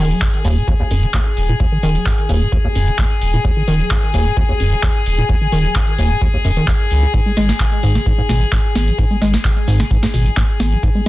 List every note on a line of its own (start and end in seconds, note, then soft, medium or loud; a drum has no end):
0.00 0.14 D#1 loud
0.00 0.12 D#3 loud
0.00 11.09 G#4 medium
0.05 closed hi-hat medium
0.11 0.23 F#3 medium
0.11 closed hi-hat soft
0.22 0.28 D#2 medium
0.22 kick loud
0.22 clap loud
0.22 closed hi-hat medium
0.34 closed hi-hat medium
0.45 0.60 D#1 medium
0.45 0.58 D#2 loud
0.45 open hi-hat loud
0.57 0.63 A#2 medium
0.68 0.74 D#2 loud
0.68 kick loud
0.68 closed hi-hat medium
0.80 0.83 D#2 loud
0.91 1.06 D#1 medium
0.91 1.04 F#2 medium
0.91 open hi-hat loud
1.03 1.07 F#3 medium
1.03 closed hi-hat medium
1.14 1.21 D#2 medium
1.14 kick loud
1.14 clap loud
1.14 closed hi-hat medium
1.37 1.52 D#1 loud
1.37 open hi-hat loud
1.49 1.55 A#2 medium
1.49 closed hi-hat medium
1.60 1.67 D#2 loud
1.60 kick loud
1.60 closed hi-hat medium
1.72 1.78 D#3 medium
1.83 1.98 D#1 loud
1.83 1.97 D#3 loud
1.83 open hi-hat loud
1.89 closed hi-hat medium
1.95 2.08 F#3 medium
1.95 closed hi-hat soft
2.06 2.13 D#2 medium
2.06 kick loud
2.06 clap loud
2.06 closed hi-hat medium
2.18 closed hi-hat medium
2.29 2.44 D#1 medium
2.29 2.43 D#2 loud
2.29 open hi-hat loud
2.41 2.47 A#2 medium
2.52 2.59 D#2 loud
2.52 kick loud
2.52 closed hi-hat medium
2.64 2.68 D#2 loud
2.75 2.90 D#1 loud
2.75 2.89 F#2 medium
2.75 open hi-hat loud
2.87 2.91 F#3 medium
2.87 closed hi-hat medium
2.98 3.05 D#2 medium
2.98 kick loud
2.98 clap loud
2.98 closed hi-hat medium
3.22 3.37 D#1 loud
3.22 open hi-hat loud
3.34 3.40 A#2 medium
3.34 closed hi-hat soft
3.45 3.51 D#2 loud
3.45 kick loud
3.45 closed hi-hat medium
3.57 3.63 D#3 medium
3.68 3.83 D#1 loud
3.68 3.81 D#3 loud
3.68 open hi-hat loud
3.74 closed hi-hat medium
3.80 3.92 F#3 medium
3.80 closed hi-hat soft
3.91 3.97 D#2 medium
3.91 kick loud
3.91 clap loud
3.91 closed hi-hat medium
4.03 closed hi-hat medium
4.14 4.29 D#1 medium
4.14 4.27 D#2 loud
4.14 open hi-hat loud
4.26 4.32 A#2 medium
4.37 4.44 D#2 loud
4.37 kick loud
4.37 closed hi-hat medium
4.49 4.53 D#2 loud
4.60 4.75 D#1 medium
4.60 4.74 F#2 medium
4.60 open hi-hat loud
4.72 4.76 F#3 medium
4.72 closed hi-hat medium
4.83 4.90 D#2 medium
4.83 kick loud
4.83 clap loud
4.83 closed hi-hat medium
5.06 5.21 D#1 loud
5.06 open hi-hat loud
5.18 5.24 A#2 medium
5.18 closed hi-hat medium
5.29 5.36 D#2 loud
5.29 kick loud
5.29 closed hi-hat medium
5.41 5.47 D#3 medium
5.52 5.67 D#1 loud
5.52 5.66 D#3 loud
5.52 open hi-hat loud
5.58 closed hi-hat medium
5.64 5.77 F#3 medium
5.64 closed hi-hat soft
5.75 5.82 D#2 medium
5.75 kick loud
5.75 clap loud
5.75 closed hi-hat medium
5.88 closed hi-hat medium
5.98 6.14 D#1 medium
5.98 6.12 D#2 medium
5.98 open hi-hat loud
6.11 6.17 A#2 medium
6.22 6.28 D#2 loud
6.22 kick loud
6.22 closed hi-hat medium
6.34 6.37 D#2 loud
6.45 6.60 D#1 medium
6.45 6.51 F#2 loud
6.45 open hi-hat loud
6.57 6.66 D#3 loud
6.57 closed hi-hat soft
6.68 6.72 D#2 loud
6.68 kick loud
6.68 clap loud
6.68 closed hi-hat medium
6.91 7.06 C#2 medium
6.91 open hi-hat loud
7.03 7.07 C#2 medium
7.03 closed hi-hat soft
7.14 7.21 G#2 loud
7.14 kick loud
7.14 closed hi-hat medium
7.14 shaker medium
7.25 7.32 G#3 medium
7.25 shaker soft
7.36 7.52 G#1 loud
7.36 7.51 G#3 loud
7.36 snare soft
7.36 open hi-hat loud
7.36 shaker medium
7.43 closed hi-hat medium
7.49 7.62 B3 medium
7.49 snare medium
7.49 closed hi-hat soft
7.49 shaker soft
7.60 7.67 G#2 medium
7.60 kick loud
7.60 clap loud
7.60 closed hi-hat medium
7.60 shaker medium
7.72 closed hi-hat medium
7.72 shaker soft
7.83 7.98 G#1 medium
7.83 7.97 G#2 loud
7.83 open hi-hat loud
7.83 shaker loud
7.95 8.01 D#3 medium
7.95 snare medium
7.95 shaker soft
8.06 8.13 G#2 loud
8.06 kick loud
8.06 closed hi-hat medium
8.06 shaker medium
8.17 8.22 G#2 loud
8.17 shaker soft
8.29 8.44 G#1 medium
8.29 8.43 B2 medium
8.29 snare medium
8.29 open hi-hat loud
8.29 shaker loud
8.41 8.45 B3 medium
8.41 closed hi-hat soft
8.41 shaker soft
8.52 8.59 G#2 medium
8.52 kick loud
8.52 clap loud
8.52 closed hi-hat medium
8.52 shaker soft
8.65 shaker soft
8.75 8.90 G#1 loud
8.75 8.89 B3 medium
8.75 snare medium
8.75 open hi-hat loud
8.75 shaker medium
8.87 8.94 D#3 medium
8.87 closed hi-hat soft
8.87 shaker soft
8.98 9.05 G#2 loud
8.98 kick loud
8.98 closed hi-hat medium
8.98 shaker medium
9.10 9.17 G#3 medium
9.10 shaker soft
9.22 9.37 G#1 loud
9.22 9.35 G#3 loud
9.22 snare soft
9.22 open hi-hat loud
9.22 shaker medium
9.28 closed hi-hat medium
9.33 9.46 B3 medium
9.33 snare medium
9.33 closed hi-hat soft
9.33 shaker soft
9.45 9.51 G#2 medium
9.45 kick loud
9.45 clap loud
9.45 closed hi-hat medium
9.45 shaker soft
9.57 closed hi-hat medium
9.57 shaker soft
9.67 9.83 G#1 medium
9.67 9.81 G#2 loud
9.67 open hi-hat loud
9.67 shaker medium
9.80 9.86 D#3 medium
9.80 snare medium
9.80 shaker soft
9.90 9.97 G#2 loud
9.90 kick loud
9.90 closed hi-hat medium
9.90 shaker medium
10.03 10.07 G#2 loud
10.03 snare medium
10.03 shaker soft
10.14 10.29 G#1 medium
10.14 10.27 B2 medium
10.14 open hi-hat loud
10.14 shaker loud
10.26 10.30 B3 medium
10.26 closed hi-hat medium
10.26 shaker soft
10.37 10.44 G#2 medium
10.37 kick loud
10.37 snare medium
10.37 clap loud
10.37 closed hi-hat medium
10.37 shaker soft
10.49 shaker soft
10.60 10.75 G#1 loud
10.60 10.74 B3 medium
10.60 snare medium
10.60 open hi-hat loud
10.60 shaker medium
10.72 10.78 D#3 medium
10.72 closed hi-hat medium
10.72 shaker soft
10.83 10.90 G#2 loud
10.83 kick loud
10.83 closed hi-hat medium
10.83 shaker medium
10.95 11.01 G#3 medium
10.95 shaker soft